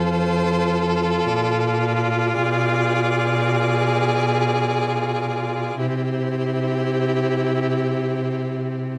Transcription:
Already playing: cello F2, viola F4, violin A4 C5
1.27 cello A#2, violin D5
2.34 cello B2, violin G#4
5.79 cello C3, viola E4, violin G4 C5

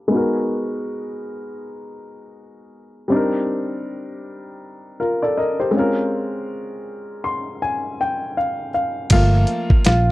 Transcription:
0.08 upright piano G#3 B3
0.12 upright piano D#4 F#4
0.16 upright piano A#4
3.08 upright piano G3 C4 D4
3.14 upright piano D#4 A#4
5.00 upright piano F4 A#4
5.22 upright piano A4 D5
5.37 upright piano A#4 D#5
5.60 upright piano G4 C5
5.71 upright piano G#3 C4 C#4
5.77 upright piano F4 A#4
7.24 upright piano C6
7.62 upright piano G#5
8.01 upright piano G5
8.37 upright piano F5
8.74 upright piano F5
9.10 fingered electric bass G1, upright piano F3 A3 A#3 F4, kick, closed hi-hat, crash
9.47 closed hi-hat
9.70 kick
9.85 fingered electric bass A#1, upright piano F4, snare, closed hi-hat

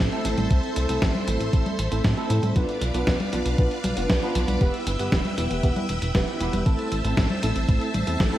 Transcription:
Already playing: string machine A4 C5 E5 C6
0.12 tine electric piano A3 C4 E4 A4, closed hi-hat
0.25 analog synth bass A1, closed hi-hat
0.38 analog synth bass A1, closed hi-hat, high conga
0.51 analog synth bass C2, tine electric piano A3 C4 E4 A4, kick, closed hi-hat
0.63 closed hi-hat
0.76 analog synth bass C2, closed hi-hat
0.89 analog synth bass C2, tine electric piano A3 C4 E4 A4, closed hi-hat
1.02 analog synth bass A1, kick, snare, closed hi-hat
1.15 closed hi-hat, high conga
1.28 analog synth bass A1, tine electric piano A3 C4 E4 A4, closed hi-hat
1.40 analog synth bass A1, closed hi-hat
1.53 analog synth bass A1, tine electric piano A3 C4 E4 A4, kick, closed hi-hat
1.66 closed hi-hat, high conga
1.79 analog synth bass A1, closed hi-hat
1.92 analog synth bass A1, tine electric piano A3 C4 E4 A4, closed hi-hat
2.05 analog synth bass A2, kick, snare, closed hi-hat
2.17 tine electric piano A3 C4 E4 A4, closed hi-hat
2.30 analog synth bass A2, closed hi-hat
2.43 analog synth bass A2, closed hi-hat, high conga
2.56 analog synth bass B1, tine electric piano B3 D4 F4 B4, string machine B4 D5 F5 D6, kick, closed hi-hat
2.69 closed hi-hat
2.81 analog synth bass B1, closed hi-hat
2.94 analog synth bass B1, tine electric piano B3 D4 F4 B4, closed hi-hat
3.07 analog synth bass B1, kick, snare, closed hi-hat
3.20 closed hi-hat, high conga
3.33 analog synth bass B1, tine electric piano B3 D4 F4 B4, closed hi-hat
3.46 analog synth bass B1, closed hi-hat
3.58 analog synth bass B1, tine electric piano B3 D4 F4 B4, kick, closed hi-hat
3.71 closed hi-hat
3.84 analog synth bass B1, closed hi-hat, high conga
3.97 analog synth bass F1, tine electric piano B3 D4 F4 B4, closed hi-hat
4.10 analog synth bass B1, kick, snare, closed hi-hat
4.22 tine electric piano B3 D4 F4 B4, closed hi-hat
4.35 analog synth bass B1, closed hi-hat
4.48 analog synth bass B1, closed hi-hat, high conga
4.61 analog synth bass E1, tine electric piano B3 E4 G4 B4, string machine E5 G5 E6, kick, closed hi-hat
4.74 closed hi-hat
4.87 analog synth bass G1, closed hi-hat
4.99 analog synth bass G1, tine electric piano B3 E4 G4 B4, closed hi-hat
5.12 analog synth bass E1, kick, snare, closed hi-hat
5.25 closed hi-hat, high conga
5.38 analog synth bass E1, tine electric piano B3 E4 G4 B4, closed hi-hat
5.51 analog synth bass E1, closed hi-hat
5.63 analog synth bass E1, tine electric piano B3 E4 G4 B4, kick, closed hi-hat
5.76 closed hi-hat, high conga
5.89 analog synth bass E1, closed hi-hat
6.02 analog synth bass E1, closed hi-hat
6.15 analog synth bass E1, tine electric piano B3 E4 G4 B4, kick, snare, closed hi-hat
6.28 closed hi-hat
6.40 analog synth bass E1, tine electric piano B3 E4 G4 B4, closed hi-hat
6.53 analog synth bass E1, closed hi-hat, high conga
6.66 analog synth bass A1, tine electric piano A3 C4 E4 A4, string machine C5 E5 A5 E6, kick, closed hi-hat
6.79 closed hi-hat
6.92 analog synth bass A1, closed hi-hat
7.04 analog synth bass A1, tine electric piano A3 C4 E4 A4, closed hi-hat
7.17 analog synth bass A1, kick, snare, closed hi-hat
7.30 closed hi-hat, high conga
7.43 analog synth bass A1, tine electric piano A3 C4 E4 A4, closed hi-hat
7.56 analog synth bass A1, closed hi-hat
7.69 analog synth bass A1, tine electric piano A3 C4 E4 A4, kick, closed hi-hat
7.81 closed hi-hat
7.94 analog synth bass A1, closed hi-hat, high conga
8.07 analog synth bass E2, tine electric piano A3 C4 E4 A4, closed hi-hat
8.20 analog synth bass A1, kick, snare, closed hi-hat
8.33 tine electric piano A3 C4 E4 A4, closed hi-hat

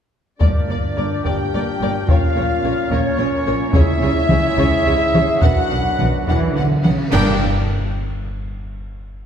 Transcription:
0.39 double bass section G1, cello section G2, timpani G2, trombone section A#2 D4, viola section A#3 A#4, woodwind section A#3 D4 G4 A#4, french horn section D4, violin section D5, trumpet section D5, taiko
0.68 double bass section G1, cello section G2, viola section A#3 A#4, violin section D5
0.96 double bass section G1, cello section G2, viola section A#3 A#4, violin section D5
1.24 double bass section G1, cello section G2, viola section A#3 A#4, french horn section G4, violin section D5 G5, trumpet section G5, taiko
1.54 double bass section G1, cello section G2, viola section A#3 A#4, violin section D5
1.81 double bass section G1, cello section G2, viola section A#3 A#4, violin section D5
2.07 double bass section A#1, cello section A#2, woodwind section C#4 F4, trombone section C#4, viola section C#4 A#4, french horn section F4, violin section C#5 F5, trumpet section F5, taiko
2.36 double bass section A#1, cello section A#2, viola section C#4 A#4, violin section C#5
2.63 double bass section A#1, cello section A#2, viola section C#4 A#4, violin section C#5
2.90 double bass section A#1, cello section A#2, french horn section C#4, viola section C#4 A#4, violin section C#5, trumpet section C#5, taiko
3.18 double bass section A#1, cello section A#2, viola section C#4 A#4, violin section C#5
3.46 double bass section A#1, cello section A#2, viola section C#4 A#4, violin section C#5
3.72 double bass section C#2, cello section C#3, woodwind section G#3 G#4 C#5, viola section C#4 G#4, french horn section E4, violin section C#5 E5, trumpet section E5, taiko
4.02 double bass section C#2, cello section C#3, viola section C#4 G#4, violin section C#5
4.29 double bass section C#2, cello section C#3, viola section C#4 G#4, violin section C#5, taiko mid
4.57 double bass section C#2, trombone section G#2, cello section C#3, viola section C#4 G#4, violin section C#5, taiko
4.86 double bass section C#2, cello section C#3, viola section C#4 G#4, violin section C#5
5.14 double bass section C#2, cello section C#3, viola section C#4 G#4, violin section C#5, taiko mid
5.41 double bass section B1, trombone section F#2 D4, cello section B2, woodwind section B3 D4 F#4 B4, viola section D4 B4, french horn section F#4, violin section F#5, trumpet section F#5, taiko
5.70 double bass section B1, cello section B2, viola section D4 B4, violin section F#5
5.99 double bass section B1, cello section B2, viola section D4 B4, violin section F#5, taiko mid
6.27 double bass section B1, cello section E3, viola section D4 B4, violin section F#5, taiko
6.55 double bass section B1, cello section D3, viola section D4 B4, violin section F#5
6.84 double bass section B1, cello section C#3, viola section D4 B4, violin section F#5, taiko mid
7.12 double bass section G1, timpani G2, trombone section G2 A#3, cello section G2, woodwind section A#3 D4 G4 D5, viola section D4 A#4, trumpet section D4, french horn section G4, violin section G5, concert bass drum, taiko low, crash

